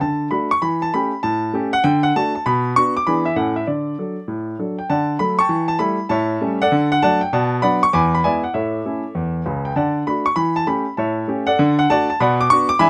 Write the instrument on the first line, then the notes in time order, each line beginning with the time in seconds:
grand piano
0.01 D3 A5
0.31 A3 D4 F#4 B5
0.51 C#6
0.62 E3 B5
0.82 A5
0.94 A3 C#4 G4 B5
1.23 A2 A5
1.54 A3 C#4 G4
1.73 F#5
1.84 D3 G5
2.03 F#5
2.16 A3 D4 F#4 A5
2.35 A5
2.46 B2 B5
2.76 B3 D4 F#4 C#6
2.97 D6
3.07 E3 B3 D4 G#4 B5
3.25 E5
3.36 A2 A3 C#4 A4 F#5
3.56 E5
3.67 D3 D5
3.98 F#3 D4 A4
4.28 A2
4.59 F#3 D4 A4
4.79 G5
4.90 D3 D5 F#5 A5
5.19 F#3 A3 A4 B5
5.39 G5 A5 C#6
5.49 E3
5.68 A5
5.79 G3 A3 E4 B5
6.09 A2 C#5 E5 A5
6.41 G3 A3 C#4
6.62 A4 D5 F#5
6.72 D3
6.92 F#5
7.02 F#3 A3 D4 D5 F#5 A5
7.21 G5
7.33 B2 D5 F#5 A5
7.62 F#3 B3 D4 D5 F#5 B5
7.83 C#6
7.93 E2 G#5 B5 D6
8.15 B5
8.24 G#3 B3 E4 D5 E5 G#5
8.44 F#5
8.54 A2 A4 C#5 E5
8.86 A3 C#4 E4
9.15 E2
9.46 C#2 C#3
9.65 G5
9.76 D3 D5 F#5 A5
10.07 A3 D4 F#4 B5
10.26 C#6
10.36 E3 B5
10.56 A5
10.67 A3 C#4 G4 B5
10.97 A2 C#5 E5 A5
11.28 A3 C#4 G4
11.47 A4 D5 F#5
11.59 D3
11.79 F#5
11.90 A3 D4 F#4 D5 F#5 A5
12.10 A5
12.20 B2 D5 F#5 B5
12.41 D6
12.50 B3 D4 F#4 C#6
12.69 D6
12.79 E3 G#3 D4 E4 E5 G#5 B5